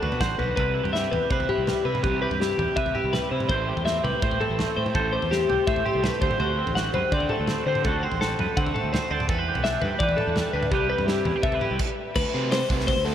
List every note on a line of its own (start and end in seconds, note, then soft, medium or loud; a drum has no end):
0.00 0.10 D2 loud
0.00 0.58 D3 medium
0.00 1.67 G3 medium
0.00 0.56 D4 medium
0.00 0.38 F#4 medium
0.00 0.21 B4 medium
0.00 floor tom medium
0.12 0.19 B2 medium
0.12 floor tom medium
0.21 0.37 A1 medium
0.21 0.55 C5 medium
0.21 0.39 F#5 medium
0.21 kick loud
0.21 snare medium
0.39 0.56 B1 medium
0.39 0.55 F#4 medium
0.39 0.55 B4 medium
0.39 floor tom medium
0.56 0.79 C2 loud
0.56 2.01 C3 medium
0.56 0.93 B4 medium
0.56 1.32 B4 medium
0.56 kick loud
0.56 floor tom medium
0.74 0.83 E4 medium
0.83 1.06 G2 medium
0.83 1.12 G4 soft
0.83 floor tom medium
0.93 1.50 E4 medium
0.93 1.12 E5 medium
0.93 snare medium
1.12 1.19 E2 medium
1.12 2.22 G4 medium
1.12 1.30 B4 medium
1.12 floor tom medium
1.12 mid tom medium
1.30 1.45 C3 loud
1.30 2.02 B4 medium
1.30 1.49 C5 medium
1.30 kick loud
1.40 floor tom medium
1.49 1.85 E4 medium
1.49 1.86 G4 medium
1.49 mid tom medium
1.58 1.73 C2 medium
1.67 3.13 G3 medium
1.67 snare medium
1.67 floor tom medium
1.67 mid tom medium
1.85 2.05 C3 medium
1.85 2.41 E4 medium
1.85 2.03 B4 medium
1.95 mid tom medium
2.03 2.26 C2 loud
2.03 3.47 C3 medium
2.03 2.21 G4 medium
2.03 2.76 B4 medium
2.03 kick loud
2.03 floor tom medium
2.22 2.58 G4 medium
2.22 2.40 B4 medium
2.31 2.53 G2 medium
2.31 floor tom medium
2.40 2.95 E4 medium
2.40 2.77 G4 medium
2.40 snare medium
2.58 2.66 E2 medium
2.58 3.53 G4 medium
2.58 floor tom medium
2.58 mid tom medium
2.76 2.91 C3 medium
2.76 3.48 B4 medium
2.76 2.95 E5 medium
2.76 kick loud
2.86 floor tom medium
2.95 3.32 E4 medium
2.95 3.13 G4 medium
2.95 mid tom medium
3.04 3.19 C2 medium
3.13 4.58 G3 medium
3.13 3.31 B4 medium
3.13 snare medium
3.13 floor tom medium
3.13 mid tom medium
3.31 3.51 C3 medium
3.31 3.85 E4 medium
3.31 3.48 C5 medium
3.40 mid tom medium
3.49 3.71 A1 loud
3.49 4.93 A2 medium
3.49 3.85 C5 medium
3.49 4.23 C5 medium
3.49 kick loud
3.49 floor tom medium
3.69 4.03 G4 medium
3.76 3.98 E2 medium
3.76 floor tom medium
3.85 4.40 C4 medium
3.85 4.03 E5 medium
3.85 snare medium
4.04 4.12 C2 medium
4.04 4.93 G4 medium
4.04 4.22 B4 medium
4.04 floor tom medium
4.04 mid tom medium
4.22 4.37 A2 loud
4.22 4.41 C5 medium
4.22 4.95 C5 medium
4.22 kick loud
4.31 floor tom medium
4.41 4.77 C4 medium
4.41 4.77 A4 medium
4.41 mid tom medium
4.50 4.64 A1 medium
4.58 5.16 A3 medium
4.58 snare medium
4.58 floor tom medium
4.58 mid tom medium
4.76 4.96 A2 medium
4.76 5.32 C4 medium
4.76 4.95 C5 medium
4.86 mid tom medium
4.94 5.17 A1 loud
4.94 6.22 A2 medium
4.94 5.13 A4 medium
4.94 5.68 C5 medium
4.94 kick loud
4.94 floor tom medium
5.13 5.48 G4 medium
5.13 5.31 C5 medium
5.22 5.44 E2 medium
5.22 floor tom medium
5.31 5.85 C4 medium
5.31 5.68 G4 medium
5.31 snare medium
5.49 5.57 C2 medium
5.49 6.20 G4 medium
5.49 floor tom medium
5.49 mid tom medium
5.67 5.82 A2 loud
5.67 6.22 C5 medium
5.67 5.85 E5 medium
5.67 kick loud
5.76 floor tom medium
5.85 6.58 C4 medium
5.85 6.04 G4 medium
5.85 mid tom medium
5.95 6.09 C2 medium
6.03 6.98 A3 medium
6.03 6.22 B4 medium
6.03 snare medium
6.03 floor tom medium
6.03 mid tom medium
6.21 6.29 D2 medium
6.21 7.66 D3 medium
6.21 6.39 C5 medium
6.21 6.94 C5 medium
6.21 kick loud
6.31 mid tom medium
6.40 6.62 D2 loud
6.40 6.76 F#4 medium
6.40 6.75 C5 medium
6.40 floor tom medium
6.58 7.13 C4 medium
6.67 6.89 A1 medium
6.67 floor tom medium
6.75 7.64 F#4 medium
6.75 6.94 F#5 medium
6.75 snare medium
6.94 7.02 F#2 medium
6.94 7.65 B4 medium
6.94 7.12 C5 medium
6.94 floor tom medium
6.94 mid tom medium
7.12 7.26 D3 loud
7.12 7.49 C4 medium
7.12 7.30 D5 medium
7.12 kick loud
7.20 floor tom medium
7.29 7.65 A3 medium
7.29 7.66 A4 medium
7.29 mid tom medium
7.40 7.54 D2 medium
7.47 8.03 C4 medium
7.47 snare medium
7.47 floor tom medium
7.47 mid tom medium
7.66 7.86 D3 medium
7.66 9.09 D3 medium
7.66 7.84 C5 medium
7.66 8.39 C5 medium
7.75 mid tom medium
7.84 8.06 D2 loud
7.84 8.21 F#4 medium
7.84 8.03 A4 medium
7.84 kick loud
7.84 floor tom medium
8.03 8.56 C4 medium
8.03 8.21 C5 medium
8.12 8.33 A1 medium
8.12 floor tom medium
8.21 9.09 F#4 medium
8.21 8.57 A4 medium
8.21 snare medium
8.39 8.46 F#2 medium
8.39 9.09 B4 medium
8.39 floor tom medium
8.39 mid tom medium
8.57 8.71 D3 loud
8.57 8.92 C4 medium
8.57 8.75 F#5 medium
8.57 kick loud
8.66 floor tom medium
8.74 9.09 A3 medium
8.74 8.93 A4 medium
8.74 mid tom medium
8.84 8.98 D2 medium
8.93 9.65 C4 medium
8.93 9.11 C5 medium
8.93 snare medium
8.93 floor tom medium
8.93 mid tom medium
9.11 9.29 D2 medium
9.11 9.28 D3 medium
9.11 9.27 C5 medium
9.11 9.28 D5 medium
9.20 mid tom medium
9.28 9.50 E2 loud
9.28 10.70 E3 medium
9.28 9.39 A4 medium
9.28 9.64 B4 loud
9.28 kick loud
9.28 floor tom medium
9.39 10.01 B4 medium
9.48 9.85 G4 medium
9.55 9.77 B1 medium
9.55 floor tom medium
9.64 10.19 D4 medium
9.64 9.82 E5 medium
9.64 snare medium
9.82 9.90 G2 medium
9.82 10.71 G4 medium
9.82 10.00 B4 medium
9.82 floor tom medium
9.82 mid tom medium
9.99 10.15 E3 loud
9.99 10.71 B4 medium
9.99 10.18 D5 medium
9.99 kick loud
10.09 floor tom medium
10.17 10.54 D4 medium
10.17 10.53 A4 medium
10.17 mid tom medium
10.27 10.42 E2 medium
10.36 10.71 G3 medium
10.36 snare medium
10.36 floor tom medium
10.36 mid tom medium
10.53 10.72 D2 medium
10.53 10.71 D4 medium
10.53 10.71 B4 medium
10.63 mid tom medium
10.71 10.93 C2 loud
10.71 11.77 C3 medium
10.71 13.15 G3 medium
10.71 11.08 E4 medium
10.71 10.89 G4 medium
10.71 10.90 G4 medium
10.71 11.44 B4 medium
10.71 kick loud
10.71 floor tom medium
10.90 11.26 G4 medium
10.90 11.07 B4 medium
10.98 11.20 G2 medium
10.98 floor tom medium
11.07 11.26 E4 medium
11.07 11.43 G4 medium
11.07 snare medium
11.25 11.33 E2 medium
11.25 11.36 E4 medium
11.25 floor tom medium
11.25 mid tom medium
11.36 11.80 G4 medium
11.43 11.58 C3 loud
11.43 11.54 A4 medium
11.43 11.62 E5 medium
11.43 kick loud
11.52 11.80 B4 medium
11.52 floor tom medium
11.61 11.78 E4 medium
11.61 11.80 G4 medium
11.61 mid tom medium
11.71 11.78 C2 medium
11.79 kick loud
11.79 crash loud
12.15 12.23 D2 loud
12.15 12.51 B4 medium
12.15 kick loud
12.15 crash loud
12.34 12.63 C3 medium
12.34 12.58 A3 medium
12.34 12.58 C4 medium
12.34 12.57 F#4 loud
12.34 12.57 C5 loud
12.52 12.70 C5 medium
12.52 snare loud
12.52 open hi-hat medium
12.69 12.91 C2 loud
12.69 12.93 A3 medium
12.69 12.93 C4 medium
12.69 12.93 F#4 medium
12.69 12.87 B4 medium
12.69 12.93 C5 medium
12.69 kick medium
12.80 snare soft
12.87 13.05 C5 loud
12.87 kick loud
12.87 open hi-hat medium
12.96 13.15 D2 medium
13.05 13.15 A3 medium
13.05 13.15 C4 medium
13.05 13.15 F#4 loud
13.05 13.15 A4 medium
13.05 13.15 C5 loud